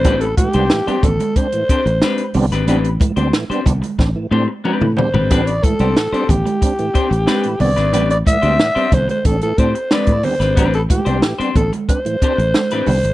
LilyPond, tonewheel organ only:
\new Staff \with { instrumentName = "Tonewheel organ" } { \time 4/4 \key a \minor \tempo 4 = 91 <g b c' d'>16 r16 <a, e>16 <g b c' d'>16 <a, e>16 <g b c' d'>16 <c' d'>16 r16 <c' d'>16 <a, e>16 <c' d'>16 r8. <g b c' d'>16 r16 | <g b c' d'>16 r16 <a, e>16 <g b c' d'>16 <a, e>16 <g b c' d'>16 <c' d'>16 r16 <c' d'>16 <a, e>16 <c' d'>16 r16 <c' d'>16 <a, e>16 <g b c' d'>16 r16 | <g b c' d'>16 r16 <a, e>16 <g b c' d'>16 <a, e>16 <g b c' d'>16 <c' d'>16 r16 <c' d'>16 <a, e>16 <c' d'>16 r16 <c' d'>16 <a, e>16 <g b c' d'>16 r16 | <g b c' d'>16 r16 <a, e>16 <g b c' d'>16 <a, e>16 <g b c' d'>16 <c' d'>16 r16 <c' d'>16 <a, e>16 <c' d'>16 r16 <c' d'>16 <a, e>16 <g b c' d'>16 r16 |
<g b c' d'>16 r16 <a, e>16 <g b c' d'>16 <a, e>16 <g b c' d'>16 <c' d'>16 r16 <c' d'>16 <a, e>16 <c' d'>16 r16 <c' d'>16 <a, e>16 <g b c' d'>16 r16 | }